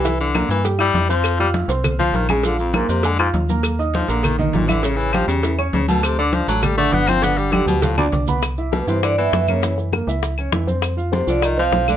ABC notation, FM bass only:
X:1
M:4/4
L:1/8
Q:1/4=200
K:Flyd
V:1 name="FM bass" clef=bass
C,,3 G,,3 F,,2- | F,,3 C,,3 _B,,,2- | _B,,,3 F,,3 _E,,2- | _E,,3 _B,,,3 A,,,2- |
A,,,3 E,,3 D,,2- | D,,3 A,,,3 G,,,2- | G,,,3 D,,3 C,,2- | C,,3 G,,3 ^F,,2- |
^F,,3 ^C,,3 =F,,2- | F,,3 C,,3 B,,,2 |]